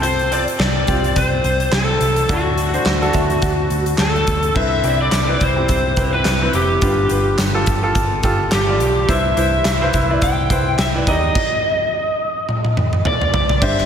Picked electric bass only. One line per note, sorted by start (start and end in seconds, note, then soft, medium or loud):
0.00 0.45 C2 medium
0.59 0.83 C2 medium
0.88 1.11 C2 medium
1.16 1.40 C2 medium
1.44 1.68 C2 medium
1.72 1.96 C2 medium
2.01 2.24 C2 medium
2.29 2.76 D2 medium
2.86 3.09 D2 medium
3.14 3.38 D2 medium
3.43 3.66 D2 medium
3.70 3.94 D2 medium
3.99 4.22 D2 medium
4.28 4.51 D2 medium
4.56 4.79 C2 medium
4.84 5.07 C2 medium
5.12 5.36 C2 medium
5.41 5.64 C2 medium
5.69 5.93 C2 medium
5.97 6.21 C2 medium
6.25 6.49 C2 medium
6.54 6.77 F1 medium
6.82 7.06 G1 medium
7.11 7.34 G1 medium
7.39 7.62 G1 medium
7.67 7.91 G1 medium
7.95 8.19 G1 medium
8.23 8.47 G1 medium
8.53 8.80 G1 medium
8.80 9.04 B1 medium
9.09 9.32 C2 medium
9.37 9.60 C2 medium
9.65 9.89 C2 medium
9.94 10.17 C2 medium
10.22 10.45 C2 medium
10.50 10.74 C2 medium
10.79 11.02 C2 medium
11.07 11.30 D#2 medium
13.62 13.86 G1 loud